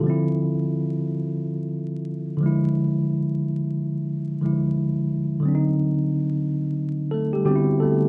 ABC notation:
X:1
M:4/4
L:1/16
Q:"Swing 16ths" 1/4=89
K:Ephr
V:1 name="Tine electric piano"
[FA] z12 z3 | z16 | z8 z2 [A,A] [G,G] [G,G]2 [A,A]2 |]
V:2 name="Tine electric piano"
[D,F,CE]12- [D,F,CE]2 [D,F,^G,E]2- | [D,F,^G,E]8- [D,F,G,E]2 [D,F,G,E]6 | [D,^F,CD_E]12 [D,B,CD=E^F]4 |]